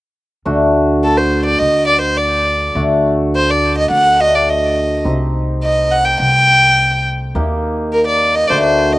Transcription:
0.45 D2 A3 D4 F#4
1.04 A4
1.17 C5
1.45 D5
1.59 D2 D#5
1.88 D5
2.02 C5
2.17 D5
2.75 D2 A3 D4 F#4
3.36 C5
3.50 D5
3.77 D#5
3.91 D2 F#5
4.19 D3 A3 F#4 D#5
4.35 D5
4.49 D#5
5.05 C2 C4 D#4 G4
5.63 D#5
5.91 F#5
6.05 G5
6.20 C2 G5
7.35 D#2 A#3 D#4 G4
7.93 A#4
8.07 D5
8.35 D#5
8.47 D2 A3 D4 F#4 C5 D5
8.63 C5
8.92 D#5

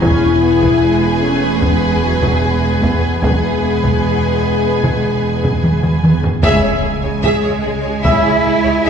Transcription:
0.01 E1 E2 C#4 E4 G#4 B4 G#5, taiko
0.42 B3
0.62 taiko
0.82 G#3
1.22 A3 C#4
1.61 G#3 B3, taiko
2.02 F#3
2.23 taiko
2.43 G#3
2.83 A3 B3, taiko
3.22 E1 E2 G#3 B3 G#4 B4 G#5, taiko
3.83 taiko
4.83 taiko
5.44 taiko
5.63 taiko mid
5.84 taiko mid
6.03 taiko mid
6.24 taiko low
6.43 C#2 C#3 G#3 G#4 C#5 E5 G#5, taiko, impact
6.63 C#2 G#4 C#5
6.83 C#2 G#4
7.03 C#2 G#4 C#5
7.23 C#2 C#3 G#3 G#4 E5, taiko
7.43 C#2 G#4 C#5
7.62 C#2 G#4
7.66 G#4
7.82 C#2 G#4 C#5
8.02 C#2 G#3 E4 G#4 C#5 E5, taiko
8.24 C#2 G#4 C#5
8.43 C#2 G#4
8.64 C#2 G#4 C#5
8.85 C#2 F#3 D#4 G#4 E5

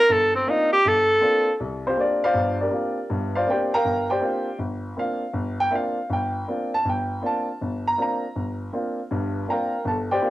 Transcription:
0.00 A#4
0.09 G1 A4
0.35 C4
0.47 A#3 C4 D4 D#4 F4
0.73 G4
0.85 G1 A4
1.21 A#3 C4 D4 F4
1.60 C2
1.87 C4 F4 G4 C5
1.97 A#3 C4 D4 F4 D5
2.01 D4 G4 A#4
2.24 F4 C5 D5 F5
2.34 G1 G2
2.61 D4 G4 A#4 D5
2.71 A#3 C4 D4 F4
3.10 G1 G2
3.35 F4 C5 D5 F5
3.46 A#3 C4 D4 F4 G5
3.51 G4 C5 D5
3.74 A#4 F5 G5 A#5
3.85 G1
4.10 G4 C5 D5 G5
4.21 A#3 C4 D4 F4
4.59 G1
4.97 A#3 C4 D4 F4 F5
5.33 G1
5.60 G5
5.71 A#3 C4 D4 F4 E5
5.75 F5
6.10 G1 G5
6.48 A#3 C4 D4 F4
6.74 A5
6.85 G1
6.89 G5
7.22 A#3 C4 D4 F4
7.26 A5
7.61 G1
7.87 A#5
7.98 A#3 C4 D4 F4
8.02 A#5
8.36 G1
8.73 A#3 C4 D4 F4
9.11 G1 G2
9.48 A#3 C4 D4 F4 A#4 F5 G5 A#5
9.85 G1 A4 A5
10.11 G4 C5 D5 G5
10.22 A#3 C4 D4 F4

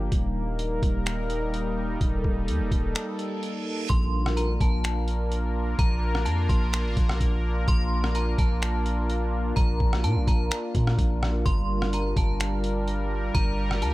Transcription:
Already playing: A#3
0.12 D#1 G3 D#4 A#4, kick, closed hi-hat
0.59 closed hi-hat
0.82 D#1, kick, closed hi-hat
1.06 finger snap, closed hi-hat
1.30 closed hi-hat
1.54 closed hi-hat
2.01 D#1 A4, kick, closed hi-hat
2.24 D#1, kick
2.48 D#2, closed hi-hat
2.60 D#1
2.72 D#1, kick, closed hi-hat
2.95 finger snap, closed hi-hat, reverse cymbal
3.19 closed hi-hat
3.43 closed hi-hat
3.90 A#1 A#3 D4 F4 A#4 C6, kick, closed hi-hat
4.26 cross-stick
4.37 A#5, closed hi-hat
4.61 A#1 A5, kick, closed hi-hat
4.84 finger snap, closed hi-hat
5.08 closed hi-hat
5.32 closed hi-hat
5.79 A#1 A#5, kick, closed hi-hat
6.15 cross-stick
6.25 F2 A5, closed hi-hat
6.49 A#1 C6, kick, closed hi-hat
6.73 finger snap, closed hi-hat
6.85 A1
6.97 A#1, kick, closed hi-hat
7.09 cross-stick
7.20 A#1, kick, closed hi-hat
7.68 A#1 C6, kick, closed hi-hat
8.04 cross-stick
8.15 A#5, closed hi-hat
8.38 A#1 A5, kick, closed hi-hat
8.62 finger snap, closed hi-hat
8.86 closed hi-hat
9.10 closed hi-hat
9.56 A#1 A#5, kick, closed hi-hat
9.80 A#1, kick
9.93 cross-stick
10.04 A#2 A5, closed hi-hat
10.16 A#1
10.27 A#1 A#5, kick, closed hi-hat
10.51 finger snap, closed hi-hat
10.75 A#2, kick, closed hi-hat
10.87 cross-stick
10.98 A#1, kick, closed hi-hat
11.23 cross-stick
11.46 G1 G3 A#4 C6, kick, closed hi-hat
11.82 cross-stick
11.93 A#5, closed hi-hat
12.16 G1 A5, kick, closed hi-hat
12.40 finger snap, closed hi-hat
12.64 closed hi-hat
12.88 closed hi-hat
13.35 G1 A#5, kick, closed hi-hat
13.71 cross-stick
13.82 D2 A5, closed hi-hat

